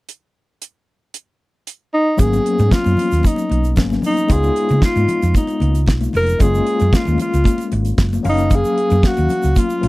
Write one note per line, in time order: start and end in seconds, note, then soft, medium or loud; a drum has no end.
0.09 closed hi-hat soft
0.62 closed hi-hat medium
1.14 closed hi-hat medium
1.67 closed hi-hat medium
1.94 2.21 D#4 medium
2.17 2.38 G#1 medium
2.17 3.73 F#3 medium
2.17 3.73 A#3 medium
2.17 3.74 B3 medium
2.17 3.75 C#4 medium
2.17 2.74 G#4 loud
2.17 kick medium
2.17 closed hi-hat medium
2.17 muted conga soft
2.17 shaker medium
2.33 closed hi-hat soft
2.33 muted conga soft
2.33 shaker soft
2.46 closed hi-hat medium
2.59 2.68 G#2 medium
2.59 closed hi-hat soft
2.59 high conga medium
2.59 shaker soft
2.71 3.28 F4 loud
2.71 kick loud
2.71 snare loud
2.71 muted conga soft
2.71 shaker medium
2.84 2.95 F#2 medium
2.84 closed hi-hat soft
2.84 muted conga soft
2.84 high conga medium
2.84 shaker medium
2.97 closed hi-hat medium
2.97 low conga medium
2.97 shaker soft
3.12 3.21 D#2 medium
3.12 closed hi-hat medium
3.12 shaker medium
3.23 3.78 D#4 medium
3.23 kick loud
3.23 closed hi-hat medium
3.23 muted conga soft
3.23 high conga medium
3.23 shaker medium
3.36 closed hi-hat soft
3.36 muted conga soft
3.36 shaker medium
3.50 3.77 B1 medium
3.50 closed hi-hat medium
3.50 high conga medium
3.64 closed hi-hat soft
3.64 shaker soft
3.76 3.96 G#1 medium
3.76 4.29 F#3 soft
3.76 4.30 A#3 soft
3.76 4.28 B3 soft
3.76 4.30 C#4 soft
3.76 kick loud
3.76 snare loud
3.76 muted conga soft
3.76 shaker medium
3.90 snare soft
3.90 muted conga soft
3.90 high conga medium
3.90 shaker soft
4.02 4.33 D#4 loud
4.02 open hi-hat medium
4.02 low conga medium
4.02 shaker medium
4.17 closed hi-hat soft
4.17 shaker soft
4.28 4.49 C#2 loud
4.28 6.35 G#3 medium
4.28 6.36 B3 medium
4.28 6.36 D#4 medium
4.28 6.37 F4 medium
4.28 4.83 G#4 loud
4.28 kick loud
4.28 closed hi-hat medium
4.28 muted conga soft
4.28 shaker medium
4.43 muted conga soft
4.43 shaker medium
4.56 closed hi-hat medium
4.69 4.79 C#3 medium
4.69 closed hi-hat soft
4.69 high conga medium
4.69 shaker soft
4.82 5.32 F4 medium
4.82 kick loud
4.82 snare loud
4.82 muted conga soft
4.82 shaker medium
4.96 5.05 G#2 medium
4.96 closed hi-hat soft
4.96 muted conga soft
4.96 high conga medium
4.96 shaker medium
5.08 closed hi-hat medium
5.08 low conga medium
5.08 shaker soft
5.22 5.32 F2 medium
5.22 closed hi-hat soft
5.22 shaker medium
5.34 5.85 D#4 medium
5.34 kick loud
5.34 closed hi-hat medium
5.34 muted conga soft
5.34 high conga medium
5.34 shaker medium
5.47 closed hi-hat soft
5.47 muted conga soft
5.47 shaker soft
5.60 5.88 C#2 medium
5.60 closed hi-hat soft
5.60 high conga medium
5.75 closed hi-hat soft
5.75 shaker soft
5.86 6.06 B1 medium
5.86 kick loud
5.86 snare loud
5.86 muted conga soft
5.86 shaker medium
6.00 closed hi-hat soft
6.00 high conga medium
6.00 shaker soft
6.13 6.33 F1 medium
6.13 6.43 A#4 loud
6.13 open hi-hat medium
6.13 low conga medium
6.13 shaker medium
6.26 closed hi-hat soft
6.26 shaker soft
6.39 6.59 F#1 loud
6.39 8.20 G#3 medium
6.39 8.21 A#3 medium
6.39 8.21 C#4 medium
6.39 8.22 F4 medium
6.39 6.96 G#4 loud
6.39 kick loud
6.39 closed hi-hat medium
6.39 muted conga soft
6.39 shaker medium
6.54 shaker medium
6.67 closed hi-hat medium
6.79 6.90 F#2 medium
6.79 closed hi-hat soft
6.79 high conga medium
6.79 shaker medium
6.93 7.20 F4 medium
6.93 kick loud
6.93 snare loud
6.93 muted conga soft
6.93 shaker medium
7.05 7.16 D#2 medium
7.05 muted conga soft
7.05 high conga medium
7.05 shaker medium
7.18 7.69 F4 medium
7.18 closed hi-hat medium
7.18 low conga medium
7.18 shaker medium
7.34 7.42 C#2 medium
7.34 closed hi-hat medium
7.34 shaker medium
7.44 kick loud
7.44 closed hi-hat medium
7.44 high conga medium
7.44 shaker medium
7.58 closed hi-hat soft
7.58 muted conga soft
7.58 shaker soft
7.72 7.91 G#1 medium
7.72 closed hi-hat medium
7.72 high conga medium
7.85 closed hi-hat soft
7.85 shaker soft
7.98 8.17 F#1 medium
7.98 kick loud
7.98 snare loud
7.98 muted conga soft
7.98 shaker medium
8.13 high conga medium
8.13 shaker soft
8.23 8.62 F#1 loud
8.23 9.79 F#3 medium
8.23 9.79 A#3 medium
8.23 9.79 C#4 medium
8.23 9.80 F5 medium
8.23 open hi-hat medium
8.23 low conga medium
8.23 shaker medium
8.29 8.57 D#4 loud
8.37 closed hi-hat soft
8.37 shaker soft
8.50 kick loud
8.50 closed hi-hat medium
8.50 muted conga soft
8.50 low conga medium
8.50 shaker medium
8.55 9.08 G#4 loud
8.65 shaker medium
8.78 closed hi-hat medium
8.90 9.00 F#2 medium
8.90 closed hi-hat soft
8.90 high conga medium
8.90 shaker soft
9.03 9.60 F#4 medium
9.03 kick loud
9.03 snare loud
9.03 muted conga soft
9.03 shaker medium
9.17 9.27 D#2 medium
9.17 closed hi-hat soft
9.17 muted conga soft
9.17 high conga medium
9.17 shaker medium
9.29 closed hi-hat medium
9.29 low conga medium
9.29 shaker soft
9.43 9.53 C#2 medium
9.43 closed hi-hat soft
9.43 shaker medium
9.56 9.88 F4 medium
9.56 kick loud
9.56 closed hi-hat medium
9.56 muted conga soft
9.56 high conga medium
9.56 shaker medium
9.70 muted conga soft
9.70 shaker soft
9.81 9.88 A#1 medium
9.81 9.88 F#3 soft
9.81 9.88 A#3 soft
9.81 9.88 C#4 soft
9.81 9.88 F4 medium
9.81 closed hi-hat medium
9.81 high conga medium